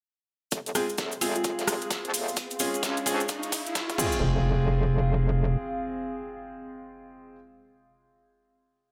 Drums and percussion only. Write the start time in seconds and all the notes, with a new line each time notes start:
0.51 kick, closed hi-hat, cabasa
0.66 closed hi-hat, cabasa
0.75 cross-stick, closed hi-hat, open hi-hat, cabasa
0.89 cabasa
0.98 kick, snare, closed hi-hat, cabasa
1.12 closed hi-hat, cabasa
1.21 closed hi-hat, open hi-hat, cabasa
1.35 closed hi-hat, cabasa
1.44 kick, closed hi-hat, cabasa
1.59 snare, closed hi-hat, cabasa
1.68 cross-stick, closed hi-hat, open hi-hat, cabasa
1.82 closed hi-hat, cabasa
1.90 kick, snare, closed hi-hat, cabasa
2.05 closed hi-hat
2.14 closed hi-hat, open hi-hat, cabasa
2.28 cabasa
2.36 kick, closed hi-hat, open hi-hat, cabasa
2.51 closed hi-hat, cabasa
2.59 closed hi-hat, open hi-hat, cabasa
2.74 closed hi-hat, cabasa
2.83 kick, snare, closed hi-hat, cabasa
2.97 closed hi-hat, cabasa
3.06 closed hi-hat, open hi-hat, cabasa
3.20 closed hi-hat, cabasa
3.28 kick, closed hi-hat, cabasa
3.43 closed hi-hat, cabasa
3.52 kick, closed hi-hat, open hi-hat, cabasa
3.66 closed hi-hat, cabasa
3.75 kick, snare, closed hi-hat, cabasa
3.90 kick, closed hi-hat
3.98 kick, crash, cabasa
4.12 cabasa